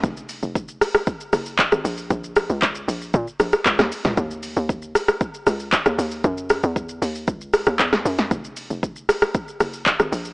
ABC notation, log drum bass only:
X:1
M:4/4
L:1/16
Q:1/4=116
K:Gb
V:1 name="Log drum bass" clef=bass
F,,,3 F,,,3 z4 G,,,2 z A,,, B,,,2 | B,,,3 D,,3 B,,,2 B,, z B,,, z D,, E,, z D,, | E,,3 E,,3 z4 D,,2 z E,, E,,2 | G,,3 _F,,3 E,,2 D,,3 E,, F,,2 G,,2 |
F,,,3 F,,,3 z4 G,,,2 z A,,, B,,,2 |]